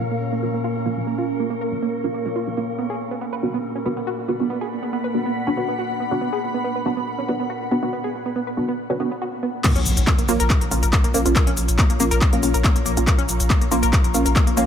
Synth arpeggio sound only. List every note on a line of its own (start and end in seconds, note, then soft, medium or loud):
0.11 0.15 A#3 medium
0.33 0.35 A#3 medium
0.43 0.45 A#3 medium
0.54 0.58 A#3 medium
0.64 0.67 F4 medium
0.86 0.88 A#3 medium
1.07 1.14 A#3 medium
1.18 1.24 F4 medium
1.40 1.44 A#3 medium
1.50 1.54 A#3 medium
1.61 1.64 A#4 medium
1.83 1.87 A#3 medium
2.04 2.06 A#3 medium
2.14 2.17 A#3 medium
2.26 2.29 A#3 medium
2.36 2.38 F4 medium
2.57 2.60 A#3 medium
2.79 2.85 B3 medium
2.90 2.96 G#4 medium
3.11 3.15 B3 medium
3.21 3.26 B3 medium
3.33 3.35 B4 medium
3.54 3.58 B3 medium
3.75 3.78 C#4 medium
3.85 3.88 B3 medium
3.97 4.01 B3 medium
4.07 4.10 F#4 medium
4.28 4.31 B3 medium
4.50 4.57 B3 medium
4.61 4.67 G#4 medium
4.83 4.87 B3 medium
4.93 4.97 B3 medium
5.04 5.06 B4 medium
5.26 5.29 B3 medium
5.47 5.49 C#4 medium
5.57 5.60 B3 medium
5.68 5.72 B3 medium
5.79 5.81 F#4 medium
6.00 6.03 B3 medium
6.21 6.28 B3 medium
6.33 6.39 G#4 medium
6.54 6.58 B3 medium
6.64 6.69 B3 medium
6.76 6.78 B4 medium
6.97 7.01 B3 medium
7.18 7.21 C#4 medium
7.28 7.31 B3 medium
7.40 7.44 B3 medium
7.50 7.53 F#4 medium
7.71 7.74 B3 medium
7.93 7.99 B3 medium
8.04 8.10 G#4 medium
8.26 8.30 B3 medium
8.36 8.40 B3 medium
8.47 8.49 B4 medium
8.68 8.72 B3 medium
8.90 8.92 C#4 medium
9.00 9.03 B3 medium
9.11 9.15 B3 medium
9.22 9.24 F#4 medium
9.43 9.45 B3 medium
9.64 9.71 A#3 medium
9.76 9.80 C#4 loud
10.07 10.12 A#3 medium
10.18 10.21 A#3 medium
10.28 10.33 A#3 loud
10.40 10.44 A#4 loud
10.83 10.85 A#4 medium
10.93 10.97 A#3 medium
11.04 11.06 A#3 medium
11.14 11.21 A#3 medium
11.36 11.42 A#3 medium
11.47 11.51 C#4 loud
11.79 11.83 A#3 medium
11.90 11.92 A#3 medium
12.00 12.04 A#3 loud
12.11 12.15 A#4 loud
12.54 12.56 A#4 medium
12.64 12.69 A#3 medium
12.75 12.78 A#3 medium
12.86 12.92 A#3 medium
13.07 13.14 A#3 medium
13.18 13.22 C#4 loud
13.50 13.54 A#3 medium
13.61 13.64 A#3 medium
13.71 13.76 A#3 loud
13.83 13.87 A#4 loud
14.26 14.28 A#4 medium
14.36 14.40 A#3 medium
14.47 14.49 A#3 medium
14.57 14.64 A#3 medium